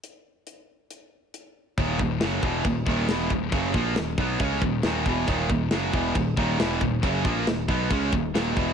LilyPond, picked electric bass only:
\new Staff \with { instrumentName = "Picked electric bass" } { \clef bass \time 4/4 \key ees \phrygian \tempo 4 = 137 r1 | ees,,8 ees,,8 ges,,8 fes,,8 ees,,8 ees,,8 fes,,8 ees,,8 | ges,,8 bes,,8 ees,,8 ces,8 des,8 ees,,8 ees,,8 fes,,8 | ees,,8 ees,,8 ges,,8 fes,,8 ees,,8 ees,,8 fes,,8 ees,,8 |
ges,,8 bes,,8 ees,,8 ces,8 des,8 ees,,8 ees,,8 fes,,8 | }